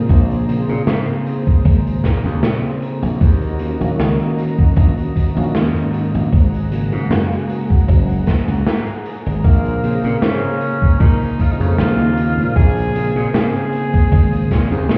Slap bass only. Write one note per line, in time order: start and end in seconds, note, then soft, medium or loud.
0.09 0.63 A#1 medium
0.69 0.84 A#2 loud
0.87 1.04 G#2 medium
1.65 1.98 G#1 medium
2.04 2.21 A#2 medium
2.25 2.40 D#2 loud
2.43 2.60 A#2 medium
3.02 3.18 A#1 medium
3.21 3.75 D#2 medium
3.81 3.96 A#1 loud
3.99 4.16 C#2 medium
4.77 4.94 A#1 medium
5.36 5.52 A#1 loud
5.55 5.75 D#2 medium
5.75 6.16 G#2 medium
6.14 6.30 A#1 medium
6.32 6.87 G#1 medium
6.92 7.07 G#2 loud
7.10 7.28 F#2 medium
7.88 8.21 F#1 medium
8.27 8.45 G#2 medium
8.48 8.63 C#2 loud
8.67 8.84 G#2 medium
9.26 9.41 G#1 medium
9.44 9.98 A#1 medium
10.04 10.19 A#2 loud
10.22 10.40 G#2 medium
11.00 11.17 A#2 medium
11.60 11.75 F2 loud
11.78 11.99 A#1 medium
11.99 12.39 D#2 medium
12.38 12.53 A#2 medium
12.56 13.10 A#1 loud
13.16 13.31 A#2 loud
13.34 13.51 G#2 medium
14.12 14.45 G#1 medium
14.51 14.68 A#2 medium
14.71 14.87 D#2 loud
14.90 14.98 A#2 medium